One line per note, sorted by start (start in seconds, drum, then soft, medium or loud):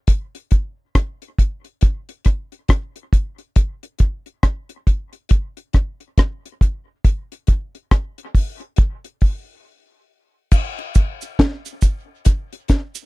0.07 kick loud
0.07 closed hi-hat medium
0.35 closed hi-hat soft
0.51 kick medium
0.51 closed hi-hat medium
0.95 kick medium
0.95 cross-stick loud
0.95 closed hi-hat medium
1.22 closed hi-hat soft
1.38 kick medium
1.38 closed hi-hat medium
1.64 closed hi-hat soft
1.81 kick loud
1.81 closed hi-hat medium
2.09 closed hi-hat medium
2.25 kick medium
2.25 cross-stick medium
2.25 closed hi-hat medium
2.52 closed hi-hat soft
2.68 kick loud
2.68 cross-stick loud
2.68 closed hi-hat medium
2.96 closed hi-hat soft
3.13 kick medium
3.13 closed hi-hat medium
3.38 closed hi-hat soft
3.56 kick loud
3.56 closed hi-hat medium
3.83 closed hi-hat medium
3.99 kick medium
3.99 closed hi-hat medium
4.26 closed hi-hat soft
4.43 kick medium
4.43 cross-stick loud
4.43 closed hi-hat medium
4.69 closed hi-hat soft
4.87 kick medium
4.87 closed hi-hat medium
5.13 closed hi-hat soft
5.29 kick loud
5.29 closed hi-hat medium
5.57 closed hi-hat soft
5.73 kick medium
5.73 cross-stick medium
5.73 closed hi-hat medium
6.00 closed hi-hat soft
6.18 kick loud
6.18 cross-stick loud
6.18 closed hi-hat medium
6.46 closed hi-hat soft
6.61 kick medium
6.61 closed hi-hat medium
7.05 kick loud
7.05 closed hi-hat medium
7.32 closed hi-hat soft
7.47 kick medium
7.47 closed hi-hat medium
7.75 closed hi-hat soft
7.91 kick loud
7.91 cross-stick loud
7.91 closed hi-hat medium
8.18 closed hi-hat soft
8.35 kick medium
8.35 open hi-hat medium
8.60 closed hi-hat soft
8.76 kick loud
8.76 closed hi-hat medium
9.04 closed hi-hat soft
9.21 kick medium
9.21 open hi-hat medium
10.51 kick loud
10.51 crash medium
10.51 cabasa medium
10.79 closed hi-hat medium
10.95 kick loud
10.95 closed hi-hat medium
10.95 cabasa medium
11.21 closed hi-hat soft
11.21 cabasa medium
11.39 kick loud
11.39 snare loud
11.39 closed hi-hat medium
11.65 closed hi-hat soft
11.65 cabasa medium
11.81 kick medium
11.81 closed hi-hat medium
11.81 cabasa medium
12.25 kick loud
12.25 closed hi-hat loud
12.25 cabasa medium
12.53 closed hi-hat soft
12.68 kick medium
12.68 snare medium
12.68 closed hi-hat medium
12.68 cabasa soft
12.95 closed hi-hat soft
12.95 cabasa medium